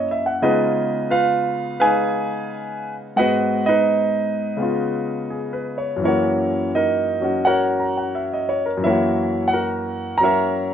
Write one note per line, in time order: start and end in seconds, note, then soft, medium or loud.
0.00 0.40 F#2 medium
0.00 0.42 F#3 soft
0.00 0.42 A#3 soft
0.00 0.43 C#4 soft
0.00 0.45 E4 medium
0.00 0.22 D#5 medium
0.11 0.30 E5 medium
0.26 0.50 F#5 medium
0.42 3.19 C#3 medium
0.42 1.79 G#3 medium
0.42 3.19 B3 medium
0.42 1.08 D#4 medium
0.42 1.09 F4 medium
0.42 1.08 G#4 medium
0.42 1.09 B4 medium
0.42 1.08 D#5 medium
1.10 1.76 F4 medium
1.10 1.76 B4 medium
1.10 1.77 F5 medium
1.80 3.17 G#3 soft
1.80 3.20 D#4 medium
1.80 2.93 G#4 medium
1.80 2.93 B4 medium
1.80 2.93 F5 medium
1.80 2.94 G#5 loud
3.16 4.58 G#2 medium
3.16 4.57 G#3 soft
3.16 4.58 B3 soft
3.16 3.64 F#4 medium
3.16 3.64 B4 medium
3.16 3.63 D#5 medium
3.16 3.68 F#5 medium
3.66 5.76 D#4 medium
3.66 5.51 B4 medium
3.66 5.75 D#5 medium
4.57 6.00 C#3 medium
4.57 6.01 G#3 soft
4.57 6.02 B3 soft
4.62 6.03 F4 medium
5.30 5.76 G#4 soft
5.53 5.91 B4 soft
5.78 6.04 C#5 soft
5.96 8.76 F#2 soft
5.96 8.80 E3 soft
6.04 8.84 A#3 soft
6.04 6.70 C#4 soft
6.04 6.70 E4 soft
6.04 7.23 F#4 medium
6.04 6.70 A#4 soft
6.04 6.70 C#5 medium
6.75 7.41 D#4 medium
6.75 7.41 A#4 medium
6.75 7.41 D#5 medium
7.21 8.83 F#3 soft
7.21 8.83 C#4 soft
7.21 7.46 F#4 soft
7.45 8.59 F#4 medium
7.45 8.59 A#4 medium
7.45 8.47 C#5 medium
7.45 7.96 F#5 medium
7.80 8.00 A#5 soft
7.97 8.21 F#5 soft
8.15 8.48 E5 soft
8.33 8.63 D#5 soft
8.49 8.70 C#5 medium
8.66 8.85 A#4 medium
8.77 10.74 F#2 medium
8.81 10.74 E3 soft
8.81 9.49 E5 medium
8.86 10.74 A#3 soft
8.86 9.50 E4 medium
8.86 9.50 A#4 medium
8.86 9.50 C#5 soft
8.90 9.53 F#4 medium
9.48 10.15 F#5 medium
9.53 10.18 F#4 medium
9.53 10.18 A#4 medium
10.18 10.74 F#3 soft
10.18 10.74 C#4 soft
10.18 10.74 A#5 loud
10.23 10.74 F#4 soft
10.23 10.74 A#4 medium
10.23 10.74 C#5 medium
10.23 10.74 E5 medium